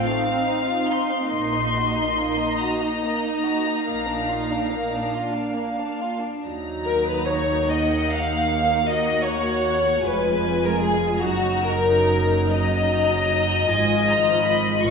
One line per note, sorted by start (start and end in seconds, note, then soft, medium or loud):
0.00 1.32 C4 soft
0.00 1.29 F5 soft
0.06 0.27 A3 soft
0.06 5.16 D#4 soft
0.06 0.87 F5 medium
0.27 0.47 C4 soft
0.47 0.68 D#4 soft
0.68 0.89 F4 soft
0.89 1.10 D#4 soft
0.89 1.30 C6 medium
1.11 1.32 C4 soft
1.31 2.39 A#1 soft
1.31 2.39 A#2 soft
1.31 6.19 A#3 soft
1.31 1.53 A#3 soft
1.31 3.89 D#5 soft
1.31 2.58 C6 medium
1.55 1.76 D#4 soft
1.77 1.98 F#4 soft
1.98 2.19 D#4 soft
2.19 2.40 A#3 soft
2.40 2.61 D#4 soft
2.61 2.82 F#4 soft
2.61 5.16 A#5 soft
2.83 3.04 D#4 soft
3.04 3.25 A#3 soft
3.25 3.46 D#4 soft
3.46 3.68 F#4 soft
3.68 3.89 D#4 soft
3.89 4.94 A#1 soft
3.89 4.94 A#2 soft
3.89 4.09 A#3 soft
3.89 6.19 F5 soft
4.10 4.31 D4 soft
4.31 4.52 F4 soft
4.52 4.73 D4 soft
4.73 4.94 A#3 soft
4.95 5.16 D4 soft
5.15 6.23 D4 soft
5.15 5.37 F4 soft
5.35 5.58 D4 soft
5.57 5.79 A#3 soft
5.80 6.02 D4 soft
6.00 6.23 F4 soft
6.22 6.44 D4 soft
6.44 10.02 D#2 soft
6.44 7.67 F#3 soft
6.44 8.86 D#4 soft
6.44 7.67 A#5 soft
6.86 7.06 A#4 medium
7.09 7.29 B4 soft
7.29 7.70 C#5 medium
7.70 10.06 A#3 soft
7.70 8.11 D#5 medium
7.70 8.88 F#5 soft
8.11 8.90 F5 medium
8.89 10.06 F#4 soft
8.89 9.29 D#5 medium
8.89 10.04 F#5 soft
9.27 10.06 C#5 medium
10.05 11.21 F1 soft
10.05 11.21 F2 soft
10.05 11.21 G#3 soft
10.05 11.21 F4 soft
10.05 10.65 B4 medium
10.05 11.23 G#5 soft
10.66 10.85 A#4 medium
10.83 11.15 G#4 medium
11.16 11.23 G#4 soft
11.22 13.70 F#1 soft
11.22 13.70 F#2 medium
11.22 12.51 F#3 medium
11.22 13.70 D#4 medium
11.22 11.65 F#4 medium
11.22 12.51 A#5 soft
11.65 12.54 A#4 medium
12.53 13.67 F#3 medium
12.53 14.90 D#5 medium
12.53 13.67 A#5 soft
13.69 14.80 G#1 medium
13.69 14.80 G#2 medium
13.69 14.82 F3 medium
13.69 14.80 F4 medium
13.69 14.07 G#5 medium
14.07 14.45 A#5 medium
14.43 14.82 B5 medium
14.82 14.90 A#1 medium
14.82 14.90 A#2 medium
14.82 14.90 F3 medium
14.82 14.90 F4 medium
14.82 14.90 C#6 medium